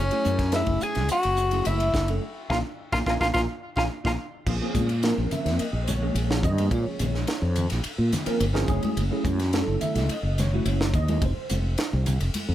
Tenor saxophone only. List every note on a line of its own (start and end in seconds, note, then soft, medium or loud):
0.00 0.55 C#4 medium
0.54 0.85 E4 medium
0.83 1.10 G#4 medium
1.11 1.69 F#4 loud
1.67 2.23 E4 medium
2.51 2.58 F4 medium
2.92 2.99 F4 medium
3.07 3.13 F4 medium
3.21 3.27 F4 medium
3.34 3.41 F4 medium
3.76 3.83 F4 medium
4.06 4.12 F4 medium